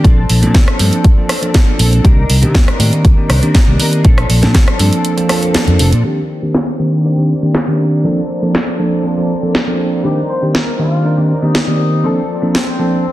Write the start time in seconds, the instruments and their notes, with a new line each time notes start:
0.04 fingered electric bass A#1, tine electric piano F3 A#3 C4 D4 A4, clean electric guitar F3 C4 D4 A4, kick, closed hi-hat
0.29 fingered electric bass A#1, open hi-hat
0.42 fingered electric bass A#2, tine electric piano F3 A#3 C4 D4 A4, clean electric guitar C4 D4 A4, closed hi-hat
0.55 fingered electric bass D2, clean electric guitar C4 D4 A4, kick, snare, closed hi-hat
0.68 cross-stick, closed hi-hat
0.79 fingered electric bass G2, clean electric guitar F3 C4 D4 A4, tine electric piano F3 A#3 C4 D4 A4, open hi-hat
0.93 closed hi-hat
1.04 kick, closed hi-hat
1.17 tine electric piano F3 A#3 C4 D4 A4
1.28 clean electric guitar F3 C4 D4 A4, cross-stick, open hi-hat
1.42 tine electric piano F3 A#3 C4 D4 A4, closed hi-hat
1.54 clean electric guitar C4 D4 A4, kick, snare, closed hi-hat
1.67 tine electric piano F3 A#3 C4 D4 A4
1.78 fingered electric bass A#1, clean electric guitar F3 C4 D4 A4, open hi-hat
1.92 clean electric guitar C4 D4 A4, closed hi-hat
2.04 fingered electric bass C2, tine electric piano D#3 A#3 C4 D4 G4, clean electric guitar G3 D4 D#4 A#4, kick, closed hi-hat
2.29 fingered electric bass C2, open hi-hat
2.42 fingered electric bass C3, tine electric piano D#3 A#3 C4 D4 G4, clean electric guitar D4 D#4 A#4, closed hi-hat
2.54 fingered electric bass D#2, clean electric guitar G3 D4 D#4, kick, snare, closed hi-hat
2.68 cross-stick, closed hi-hat
2.78 fingered electric bass A2, tine electric piano D#3 A#3 C4 G4 D5, clean electric guitar G3 D4 D#4 A#4, open hi-hat
2.93 closed hi-hat
3.05 fingered electric bass C2, kick, closed hi-hat
3.17 tine electric piano D#3 A#3 C4 D4 G4
3.28 fingered electric bass C2, clean electric guitar G3 D4 D#4 A#4, cross-stick, open hi-hat
3.42 tine electric piano D#3 A#3 C4 D4 G4, clean electric guitar D4 D#4 A#4, closed hi-hat
3.54 clean electric guitar G3 D4 D#4 A#4, kick, snare, closed hi-hat
3.67 fingered electric bass C2, tine electric piano D#3 A#3 C4 G4 D5, clean electric guitar D4 D#4 A#4
3.78 clean electric guitar G3 D4 D#4 A#4, open hi-hat
3.91 clean electric guitar D4 D#4 A#4, closed hi-hat
4.04 fingered electric bass A#1, clean electric guitar F3 C4 D4 A4, tine electric piano F3 A#3 C4 D4 A4, kick, closed hi-hat
4.18 cross-stick, closed hi-hat
4.29 fingered electric bass A#1, open hi-hat
4.41 fingered electric bass A#2, tine electric piano F3 A#3 C4 D4 A4, clean electric guitar C4 D4 A4, snare, closed hi-hat
4.55 clean electric guitar C4 D4 A4, kick, snare, closed hi-hat
4.68 cross-stick, closed hi-hat
4.79 fingered electric bass G2, clean electric guitar F3 C4 D4 A4, tine electric piano F3 A#3 C4 D4 A4, open hi-hat
4.93 closed hi-hat
5.05 closed hi-hat
5.17 tine electric piano F3 A#3 C4 D4 A4, closed hi-hat
5.28 clean electric guitar F3 C4 D4 A4, tine electric piano F3 A#3 C4 D4 A4, cross-stick, open hi-hat
5.42 clean electric guitar C4 D4 A4, closed hi-hat
5.54 clean electric guitar F3 C4 D4 A4, muted fingered electric bass stroke, snare, closed hi-hat
5.67 fingered electric bass F2, tine electric piano F3 A#3 C4 D4 A4, closed hi-hat
5.78 fingered electric bass F1, clean electric guitar F3 C4 D4 A4, open hi-hat
5.92 fingered electric bass A#2, clean electric guitar C4 D4 A4, closed hi-hat
6.03 clean electric guitar D#3 A#3 D4, tine electric piano D#3 A#3 C4 D4 G4, violin section A#3 C4 D5
6.07 clean electric guitar G4
6.42 tine electric piano D#3 A#3 C4 D4 G4
6.54 snare
6.79 tine electric piano D#3 A#3 C4 D4 G4
7.04 clean electric guitar D#3 A#3 D4 G4
7.17 tine electric piano D#3 A#3 C4 D4 G4
7.28 clean electric guitar A#3 D4 G4
7.42 tine electric piano D#3 A#3 C4 D4 G4
7.55 snare
7.67 tine electric piano D#3 A#3 C4 D4 G4
8.04 clean electric guitar F3 C4 D4 A4, tine electric piano F3 A#3 C4 D4 A4, violin section C4 A4
8.42 tine electric piano F3 A#3 C4 D4 A4
8.55 snare
8.78 tine electric piano F3 A#3 C4 D4 A4, clean electric guitar C4 D4 A4
9.03 clean electric guitar F3 C4 D4
9.07 clean electric guitar A4
9.17 tine electric piano F3 A#3 C4 D4 A4
9.42 tine electric piano F3 A#3 C4 D4 A4
9.55 snare
9.67 tine electric piano F3 A#3 C4 D4 A4
10.03 tine electric piano D#3 A#3 C4 D4 G4, clean electric guitar G3 D4 D#4, horn section G4
10.07 clean electric guitar A#4
10.29 horn section C5
10.42 tine electric piano D#3 A#3 C4 D4 G4
10.54 horn section A#4, snare
10.79 tine electric piano D#3 A#3 C4 D4 G4, horn section F4
11.04 clean electric guitar G3 D4 D#4 A#4
11.17 tine electric piano D#3 A#3 C4 D4 G4
11.28 clean electric guitar D4 D#4 A#4
11.42 tine electric piano D#3 A#3 C4 D4 G4, horn section D#4
11.55 snare
11.67 tine electric piano D#3 A#3 C4 G4 D5
12.03 clean electric guitar F3 C4 D4 A4, tine electric piano F3 A#3 C4 D4 A4, violin section A4
12.42 tine electric piano F3 A#3 C4 D4 A4
12.55 horn section C4, snare
12.79 tine electric piano F3 A#3 C4 D4 A4, clean electric guitar C4 D4 A4